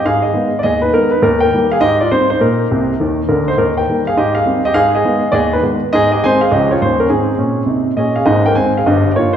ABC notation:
X:1
M:4/4
L:1/16
Q:"Swing" 1/4=204
K:Ablyd
V:1 name="Grand piano"
[Af]2 [Ae]4- [Ae] d [Ae]2 [E_c]2 [EB]2 [Ec]2 | [EB]2 [Bg]4 [Af]2 [Ge]2 [Fd]2 [Ec]2 [Ec]2 | [EB]12 [DB]2 [Ec]2 | [EB]2 [Bg]4 [Af]2 [Ge]2 [Af]4 [Ge]2 |
[Af]2 [Ae]4- [Ae] d [Ae]2 [E_c]2 z4 | [K:Ab] [Ae]2 [Ge]2 [ca]2 [Af]2 [Ge]2 [Fd]2 [Ec]2 [DB]2 | [CA]12 [Ae]2 [Af]2 | [Ae]2 [Bg]2 [ca]2 [Af]2 [Ge]4 [Fd]2 c2 |]
V:2 name="Grand piano" clef=bass
A,,4 [E,A,_C]4 E,,4 [E,A,C]4 | E,,4 [E,G,B,]4 A,,4 [E,G,C]4 | B,,4 [C,,C,]4 [E,,E,]4 [D,,D,]4 | E,,4 [E,G,B,]4 A,,4 [E,G,C]4 |
A,,4 [E,A,_C]4 E,,4 [E,A,C]4 | [K:Ab] A,,4 [E,A,C]4 [D,,F,A,D]4 [E,,E,G,D]4 | A,,4 [B,,D]4 [C,E]4 [B,,D]4 | [A,,,A,,]4 [E,A,C]4 [G,,,G,,]4 [E,B,]4 |]